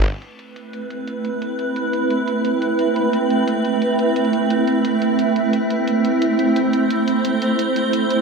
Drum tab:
CC |x---------------|----------------|----------------|----------------|
HH |x-x-x-x-x-x-x-x-|x-x-x-x-x-x-x-x-|x-x-x-x-x-x-x-x-|xxx-x-x-x-x-x-x-|

CC |----------------|----------------|
HH |x-x-x-x-x-x-x-x-|x-x-x-x-x-x-x-x-|